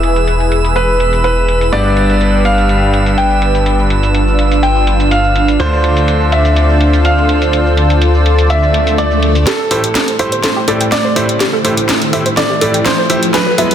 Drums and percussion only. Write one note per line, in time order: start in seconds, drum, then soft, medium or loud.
0.03 closed hi-hat medium
0.16 closed hi-hat soft
0.16 cabasa medium
0.28 closed hi-hat medium
0.28 cabasa medium
0.40 closed hi-hat soft
0.40 cabasa soft
0.52 closed hi-hat medium
0.65 closed hi-hat soft
0.65 cabasa medium
0.76 closed hi-hat medium
0.76 cabasa soft
0.89 cabasa soft
1.00 closed hi-hat medium
1.13 closed hi-hat soft
1.13 cabasa medium
1.24 closed hi-hat medium
1.24 cabasa medium
1.37 cabasa soft
1.48 closed hi-hat medium
1.61 closed hi-hat soft
1.61 cabasa medium
1.73 closed hi-hat medium
1.73 cabasa medium
1.86 cabasa soft
1.97 closed hi-hat medium
2.10 closed hi-hat medium
2.10 cabasa medium
2.21 closed hi-hat medium
2.21 cabasa medium
2.34 cabasa soft
2.45 closed hi-hat medium
2.58 closed hi-hat soft
2.58 cabasa medium
2.69 closed hi-hat medium
2.69 cabasa medium
2.82 cabasa soft
2.94 closed hi-hat medium
3.06 closed hi-hat soft
3.06 cabasa medium
3.18 closed hi-hat medium
3.18 cabasa medium
3.31 cabasa soft
3.42 closed hi-hat medium
3.55 closed hi-hat soft
3.55 cabasa medium
3.66 closed hi-hat medium
3.66 cabasa medium
3.79 cabasa soft
3.90 closed hi-hat medium
4.03 closed hi-hat medium
4.03 cabasa medium
4.15 closed hi-hat medium
4.15 cabasa medium
4.28 cabasa soft
4.39 closed hi-hat medium
4.52 closed hi-hat soft
4.52 cabasa medium
4.63 closed hi-hat medium
4.63 cabasa medium
4.76 cabasa soft
4.87 closed hi-hat medium
5.00 closed hi-hat medium
5.00 cabasa medium
5.11 closed hi-hat medium
5.11 cabasa medium
5.24 cabasa soft
5.36 closed hi-hat medium
5.48 closed hi-hat medium
5.48 cabasa medium
5.60 closed hi-hat medium
5.60 cabasa medium
5.73 cabasa soft
5.84 closed hi-hat medium
5.97 closed hi-hat medium
5.97 cabasa medium
6.08 closed hi-hat medium
6.08 cabasa medium
6.21 cabasa soft
6.32 closed hi-hat medium
6.45 closed hi-hat medium
6.45 cabasa medium
6.56 closed hi-hat medium
6.56 cabasa medium
6.69 cabasa soft
6.81 closed hi-hat medium
6.93 closed hi-hat medium
6.93 cabasa medium
7.05 closed hi-hat medium
7.05 cabasa medium
7.18 cabasa soft
7.29 closed hi-hat medium
7.42 closed hi-hat medium
7.42 cabasa medium
7.53 closed hi-hat medium
7.53 cabasa medium
7.66 cabasa soft
7.77 closed hi-hat medium
7.90 closed hi-hat medium
7.90 cabasa medium
8.02 closed hi-hat medium
8.02 cabasa medium
8.14 cabasa soft
8.26 closed hi-hat medium
8.39 closed hi-hat medium
8.39 cabasa medium
8.50 closed hi-hat medium
8.50 cabasa medium
8.63 cabasa soft
8.74 closed hi-hat medium
8.87 closed hi-hat medium
8.87 cabasa medium
8.98 closed hi-hat medium
8.98 cabasa medium
9.11 cabasa soft
9.23 closed hi-hat medium
9.35 closed hi-hat medium
9.35 cabasa medium
9.47 snare soft
9.47 closed hi-hat medium
9.71 open hi-hat loud
9.84 closed hi-hat medium
9.95 snare soft
9.95 closed hi-hat medium
10.08 closed hi-hat soft
10.19 open hi-hat medium
10.32 closed hi-hat medium
10.44 snare soft
10.44 closed hi-hat medium
10.68 open hi-hat loud
10.81 closed hi-hat medium
10.92 snare soft
10.92 closed hi-hat medium
11.16 open hi-hat medium
11.29 closed hi-hat medium
11.40 snare soft
11.40 closed hi-hat medium
11.65 open hi-hat loud
11.77 closed hi-hat medium
11.89 snare medium
11.89 closed hi-hat medium
12.02 closed hi-hat soft
12.13 open hi-hat medium
12.26 closed hi-hat medium
12.37 snare medium
12.37 closed hi-hat medium
12.61 open hi-hat loud
12.74 closed hi-hat medium
12.86 snare medium
12.86 closed hi-hat medium
13.10 open hi-hat loud
13.23 closed hi-hat medium
13.34 snare medium
13.34 closed hi-hat medium
13.58 open hi-hat loud
13.71 closed hi-hat medium